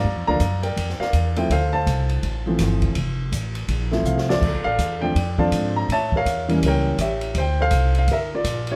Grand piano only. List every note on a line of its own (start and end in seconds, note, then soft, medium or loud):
0.00 0.27 D5 medium
0.00 0.28 F5 medium
0.00 0.26 A#5 medium
0.27 0.39 F3 medium
0.27 0.39 A3 medium
0.27 0.40 A#3 medium
0.27 0.40 D4 medium
0.27 0.62 D5 medium
0.27 0.97 F5 medium
0.27 0.65 A#5 loud
0.63 1.00 A#4 medium
0.63 0.99 D5 medium
0.63 0.97 G5 medium
1.00 1.47 A#4 medium
1.00 1.47 D5 medium
1.00 1.38 F5 medium
1.37 1.49 F3 medium
1.37 1.49 A3 medium
1.37 1.49 C4 soft
1.37 1.50 E4 medium
1.37 1.51 G5 medium
1.52 2.20 A4 medium
1.52 1.73 C5 medium
1.52 1.73 F5 medium
1.73 3.16 C5 medium
1.73 3.16 F5 medium
1.73 3.15 A5 loud
2.46 2.94 E3 medium
2.46 2.93 F3 medium
2.46 2.94 A3 soft
2.46 2.94 C4 soft
3.91 4.39 F3 medium
3.91 4.39 A3 medium
3.91 4.40 C4 medium
3.91 4.40 E4 medium
4.05 4.27 F5 medium
4.29 4.98 F4 medium
4.29 4.64 A4 medium
4.29 4.64 D5 medium
4.64 5.34 A4 medium
4.64 4.99 D5 medium
4.64 5.02 F5 loud
5.01 5.14 F3 medium
5.01 5.14 A3 soft
5.01 5.14 C4 soft
5.01 5.15 D4 medium
5.01 5.37 D5 medium
5.01 5.39 G5 loud
5.38 5.86 F3 medium
5.38 5.86 C4 medium
5.38 5.86 D4 medium
5.38 5.86 A4 medium
5.38 5.85 D5 medium
5.38 5.85 F5 medium
5.38 5.73 A5 medium
5.76 5.90 A#5 medium
5.92 6.15 C#5 medium
5.92 6.60 E5 medium
5.92 6.14 A5 loud
6.16 6.65 A#4 medium
6.16 6.65 C#5 medium
6.16 6.49 F5 loud
6.49 6.96 E3 medium
6.49 6.96 G3 medium
6.49 6.96 A#3 medium
6.49 6.96 C#4 medium
6.66 7.33 A#4 medium
6.66 6.98 C#5 medium
6.66 7.02 G5 medium
7.00 7.33 G4 medium
7.00 7.33 C#5 medium
7.00 7.34 E5 medium
7.38 7.59 C5 medium
7.38 7.61 G5 medium
7.61 8.06 A4 medium
7.61 8.06 C5 medium
7.61 7.94 F5 loud
7.99 8.09 F5 medium
8.12 8.34 A#4 medium
8.12 8.18 E5 medium
8.35 8.76 F4 medium
8.35 8.76 A#4 soft
8.35 8.71 D5 medium
8.71 8.76 E4 soft
8.71 8.76 G4 soft
8.71 8.76 C#5 medium